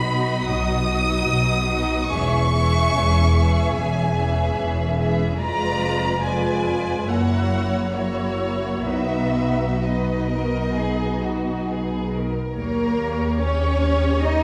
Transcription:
Already playing: B1 B2 B5
0.06 F#3 D#4 F#4 D#5
0.47 B1 B2 D#6
0.89 F#3 D#4 F#4 D#5
1.29 B1 B2
1.70 F#3 D#4 F#4 D#5
2.10 E1 E2 E3 C#4 G#4 E5 C#6
2.52 E3 C#4 G#4 E5
2.94 E1 E2
3.34 E3 C#4 G#4 E5
3.75 E1 E2 G#5
4.16 E3 C#4 G#4 E5
4.57 E1 E2
4.98 E3 C#4 G#4 E5
5.40 F1 F2 G#3 F4 B4 D5 A#5
6.22 G#3 F4 B4 D5 G#5
7.06 F#1 F#2 A#3 E4 F#4 C#5 F#5
7.93 A#3 E4 F#4 C#5
8.85 B1 B2 B3 D#4 F#4 B4 E5
9.81 B3 D#4 B4 D#5
10.29 A#4
10.76 G#4
11.22 F#4
11.67 G#4
12.13 A#4
12.55 D#2 A#3 G4 A#4 C#5
13.41 C#4 C#5
14.22 D#4 D#5

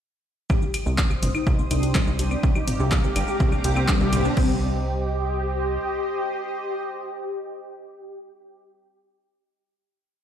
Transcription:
0.50 C2 C3 G3 C4 G4 C5 C6 D#6, kick, mid tom, riser, claves, shaker
0.62 D#4, shaker
0.74 G4, open hi-hat, claves, shaker
0.86 C2 C4, shaker
0.98 D#4, kick, clap, shaker
1.10 G4, claves, shaker
1.22 G1 C4, mid tom, open hi-hat, shaker
1.35 D#4, claves, shaker
1.47 C2 G4, kick, shaker
1.59 C4, shaker
1.71 C2 D4 D#4, open hi-hat, claves, shaker
1.83 G4, open hi-hat, shaker
1.95 C3 G3 C4, kick, clap, mid tom, claves, shaker
2.07 C2 D#4, shaker
2.19 D4 G4, open hi-hat, shaker
2.31 C4, claves, shaker
2.43 C2 G2 D3 G3 D4 F5 A#5 D6, kick, shaker
2.55 D#4 G4, claves, shaker
2.67 C4, mid tom, open hi-hat, shaker
2.80 C2 D4 G4, shaker
2.92 G4, kick, clap, claves, shaker
3.04 C4 G4, shaker
3.16 G1 D4, open hi-hat, claves, shaker
3.28 G4, shaker
3.40 C2 C4, kick, mid tom, shaker
3.52 D4, claves, shaker
3.64 C2 G4, open hi-hat, shaker
3.76 C4, claves, shaker
3.88 G2 D3 G3 D4, kick, clap, shaker
4.01 C2 G4, shaker
4.13 C4, mid tom, open hi-hat, claves, shaker
4.25 D4, shaker
4.37 C2 C3 G3 C4 G4 C5 D#5, kick, crash

